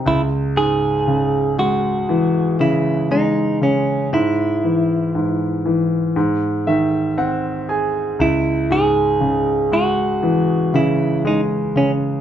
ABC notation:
X:1
M:4/4
L:1/8
Q:1/4=59
K:C#m
V:1 name="Clean electric guitar"
E G2 F2 E D C | E4 z4 | E G2 F2 E D C |]
V:2 name="Grand piano" clef=bass
C,, G,, C, G, E, C, G, C, | G,, E, G,, E, G,, [D,e] [^B,f] [Gg] | C,, G,, C, G, E, C, G, C, |]